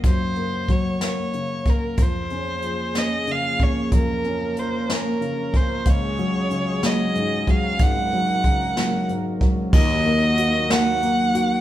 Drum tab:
CC |------|------|------|------|
HH |xxxxxx|xxxxxx|xxxxxx|xxxxxx|
SD |---o--|---o--|---o--|---o--|
BD |o-o--o|o----o|o----o|o----o|

CC |------|x-----|
HH |xxxxxx|-xxxxx|
SD |---o--|---o--|
BD |o-o--o|o-----|